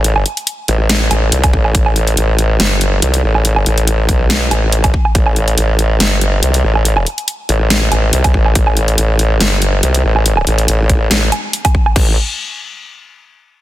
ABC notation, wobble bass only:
X:1
M:4/4
L:1/8
Q:"Swing 16ths" 1/4=141
K:Am
V:1 name="Wobble bass" clef=bass
A,,, z2 A,,,2 A,,, C,, A,,, | A,,,2 A,,,2 G,,,2 C,, A,,,- | A,,, A,,,2 B,,,2 A,,,2 z | A,,,2 A,,,2 G,,,2 C,, A,,,- |
A,,, z2 A,,,2 A,,, C,, A,,, | A,,,2 A,,,2 G,,,2 C,, A,,,- | A,,, A,,, A,,,2 A,,, z3 | A,,, z6 z |]